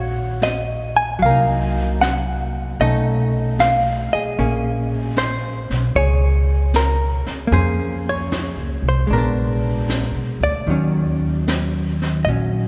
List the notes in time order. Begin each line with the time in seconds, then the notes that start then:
Already playing: A#1 D#3 G#3 F#4 C#5
0.42 D#5, snare, hi-hat pedal
0.96 G#5
1.19 C2 F#3 F5, brush sweep
1.25 A#3 A#4
1.30 D#4
2.01 F#5, snare, hi-hat pedal
2.80 B1 A3 C#4 D#4 A4 D#5, brush sweep
3.59 F5, snare, hi-hat pedal
4.13 G#4 D#5, muted upright bass stroke
4.38 A#1 A#3 C#4 G#4, brush sweep
5.17 C5, snare, hi-hat pedal
5.70 B1, snare
5.95 C#2 G#4 C#5, brush sweep
6.74 A#4, snare, hi-hat pedal
7.26 muted upright bass stroke, snare
7.47 A#3
7.51 F2 C#4 G#4 C5, brush sweep
7.56 G#4
8.09 C#5
8.32 snare, hi-hat pedal
8.56 C#2
8.82 C2
8.89 C5
9.07 A#1 G#3 D4, brush sweep
9.13 B3 A#4
9.18 D4
9.89 snare, hi-hat pedal
10.15 B1
10.40 D2 D5
10.66 D#2 D#3 F#3, brush sweep
10.71 C#4
11.48 snare, hi-hat pedal
12.01 snare
12.25 A#1 F#3 D#5, brush sweep
12.29 C#4